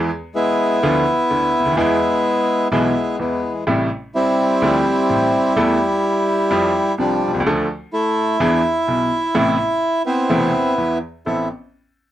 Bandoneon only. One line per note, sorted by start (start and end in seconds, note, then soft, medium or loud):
0.35 0.79 G#3 medium
0.35 1.73 B3 medium
0.35 1.76 E4 loud
1.77 2.68 G#3 medium
1.77 2.68 B3 medium
1.77 2.68 E4 loud
2.72 3.19 G#3 medium
2.72 3.18 B3 medium
2.72 3.16 E4 loud
3.19 3.64 E3 medium
3.19 3.64 G#3 medium
3.19 3.53 B3 medium
4.15 6.95 G3 medium
4.15 5.53 C4 medium
4.15 6.95 E4 loud
6.99 7.43 F3 medium
6.99 7.43 G3 medium
6.99 7.31 D4 loud
7.93 8.37 A3 medium
7.93 10.02 E4 loud
10.06 10.98 B3 medium
10.06 10.74 C4 medium
10.06 10.98 E4 loud
11.26 11.48 E4 medium